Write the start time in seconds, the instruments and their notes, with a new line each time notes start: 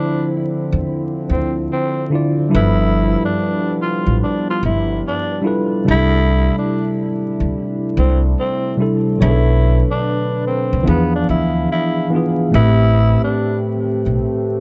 Already playing: tine electric piano D3 F3 D4 E4 C5, brass ensemble D3 F3 C4 E4, tenor saxophone D4
0.72 upright bass E2
1.30 upright bass D2, tenor saxophone C4
1.72 tenor saxophone C4
2.10 tine electric piano D3 D4 E4
2.14 tine electric piano F4 D5
2.49 tine electric piano F3 G3 D4 E4
2.54 upright bass G1, brass ensemble G3 B3, tenor saxophone E4, tine electric piano A4 B4
3.25 tenor saxophone D4
3.82 tenor saxophone F4
4.06 upright bass A1
4.23 tenor saxophone D4
4.50 tenor saxophone F4
4.63 upright bass G1, tenor saxophone E4
5.08 tenor saxophone D4
5.41 tine electric piano G3 D4 E4 F4
5.46 tine electric piano A4 B4
5.84 upright bass C2, tine electric piano C3 G3 D4 E4
5.89 brass ensemble C3 A3 D4 E4, tenor saxophone E4, tine electric piano G#4
5.96 tine electric piano A4
6.58 tenor saxophone D4
7.40 upright bass D2
7.97 upright bass C2, tenor saxophone C4
8.39 tenor saxophone C4
8.77 tine electric piano C3 G3 D4 E4
8.82 tine electric piano A4
9.18 upright bass B1, tine electric piano B2 F#3 C#5, brass ensemble D3 B4
9.22 tine electric piano D4 G#4, tenor saxophone E4
9.30 tine electric piano A4
9.91 tenor saxophone D4
10.47 tenor saxophone C4
10.73 upright bass C#2
10.83 tine electric piano E3 F3 B3 D4, brass ensemble D4 E4 G#4 F5
10.87 upright bass E2, tenor saxophone B3, tine electric piano G#4
11.15 tenor saxophone D4
11.29 upright bass D2, tenor saxophone E4
11.71 tenor saxophone E4
12.10 tine electric piano E3 B3 D4
12.15 tine electric piano F4 G#4
12.51 upright bass A1, tine electric piano A2 A3 C4 G4, brass ensemble A3 C4 G4
12.55 tenor saxophone E4, tine electric piano B4
13.24 tenor saxophone D4
14.06 upright bass B1